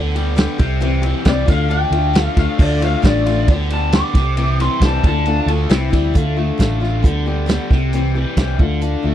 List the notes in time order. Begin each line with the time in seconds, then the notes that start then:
Already playing: D2 D3 G3 B3 G4
0.15 G3 B3 G4, ride
0.36 D3 G3 B3 G4, snare, ride
0.58 C2 C3 G3 C4 G4, kick, ride
0.80 C3 E3 G3 C4 G4, ride
1.02 E3 G3 C4 G4, ride
1.25 C2 C3 E3 G3 C4 G4 D5, kick, snare, ride
1.46 D2 D3 A3 D4 F4, kick, snare, ride
1.51 F5
1.69 D3 A3 D4 F4 G5, ride
1.91 D2 A3 D4 F4, ride
2.13 D3 A3 D4 F4, snare, ride
2.22 F5
2.36 D2 A3 D4 F4 F5, kick, snare, ride
2.58 D2 D3 A3 D4 F4, kick, crash
2.63 D5
2.81 A3 D4 F4, snare, ride
2.85 F5
3.02 A1 D3 A3 D4 F4, kick, snare, ride
3.06 D5
3.26 A3 D4 F4, snare, ride
3.48 D2 D3 G3 B3 G4, kick, ride
3.70 G3 B3 G4 A5, ride
3.92 D3 G3 B3 G4 D6, snare, ride
4.14 C2 C3 G4, kick, snare, ride
4.18 G3 C4
4.37 C3 E3 G3 C4 G4, ride
4.60 E3 G3 C4 G4 C6, snare, ride
4.80 C2 C3 E3 G3 C4 G4, kick, snare, ride
4.86 A5
5.04 D2 D3 A3 D4 F4 A5, kick, ride
5.26 D3 A3 D4 F4, ride
5.46 D2 A3 D4 F4, ride
5.69 C2 C3 E3 G3 C4 E4, snare, ride
5.90 D2 G3 C4 E4, kick, ride
6.14 D2 D3 A3 D4 F4, kick, closed hi-hat
6.37 A3 D4 F4
6.58 A1 D3 A3 D4 F4, kick, snare, closed hi-hat
6.80 A3 D4 F4, snare
7.02 D2 D3 G3 B3 G4, kick, closed hi-hat
7.26 G3 B3 G4
7.46 D3 G3 B3 G4, snare, closed hi-hat
7.70 C2 C3 G3 C4 G4, kick, snare
7.93 C3 E3 G3 C4 G4, closed hi-hat
8.15 E3 G3 C4 G4
8.37 C2 C3 E3 G3 C4 G4, kick, snare, closed hi-hat
8.58 D2 D3 A3 D4 F4, kick
8.81 D3 A3 D4 F4, closed hi-hat
9.02 D2 A3 D4 F4